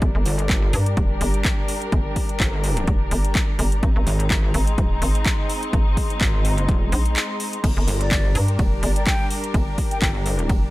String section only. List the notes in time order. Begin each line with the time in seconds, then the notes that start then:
Already playing: G3
0.02 D4 A#4
3.83 G#3 C4 D#4
7.64 G3 D4 A#4